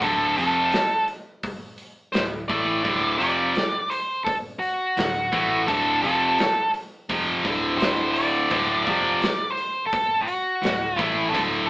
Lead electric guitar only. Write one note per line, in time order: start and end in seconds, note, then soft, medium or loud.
0.03 0.36 A4 medium
0.37 1.04 A4 medium
2.12 2.22 C5 loud
2.48 3.16 D5 loud
3.19 3.93 D5 loud
3.90 4.24 C5 medium
4.24 4.34 A4 medium
4.59 5.63 F#4 medium
5.67 6.01 A4 medium
6.02 6.70 A4 medium
7.78 8.16 C5 medium
8.14 8.82 D5 medium
8.83 9.52 D5 medium
9.51 9.86 C5 medium
9.87 10.27 A4 medium
10.21 11.00 F#4 medium
11.00 11.35 E4 medium
11.29 11.39 A4 medium
11.66 11.70 A4 medium